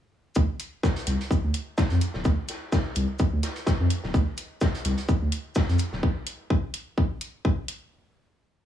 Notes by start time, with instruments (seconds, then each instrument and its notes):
0.35 sub bass D2, kick, shaker
0.60 closed hi-hat, shaker
0.83 kick, snare, shaker
0.96 closed hi-hat
1.07 sub bass C2, snare, closed hi-hat, shaker
1.21 closed hi-hat
1.31 kick, shaker
1.44 sub bass D2
1.54 closed hi-hat, shaker
1.78 kick, snare, shaker
1.90 sub bass F2, closed hi-hat
2.01 closed hi-hat, shaker
2.14 sub bass D1, snare
2.25 sub bass D2, kick, shaker
2.48 snare, closed hi-hat, shaker
2.72 kick, snare, shaker
2.96 sub bass C2, closed hi-hat, shaker
3.19 kick, shaker
3.33 sub bass D2
3.43 snare, closed hi-hat, shaker
3.56 closed hi-hat
3.66 kick, snare, shaker
3.80 sub bass F2
3.90 closed hi-hat, shaker
4.04 sub bass D1, snare
4.14 sub bass D2, kick, shaker
4.37 closed hi-hat, shaker
4.61 kick, snare, shaker
4.75 closed hi-hat
4.84 sub bass C2, snare, closed hi-hat, shaker
4.98 closed hi-hat
5.09 kick, shaker
5.22 sub bass D2
5.32 closed hi-hat, shaker
5.55 kick, snare, shaker
5.69 sub bass F2, closed hi-hat
5.79 closed hi-hat, shaker
5.93 sub bass D1, snare
6.03 kick
6.27 closed hi-hat
6.50 kick
6.74 closed hi-hat
6.98 kick
7.21 closed hi-hat
7.45 kick
7.68 closed hi-hat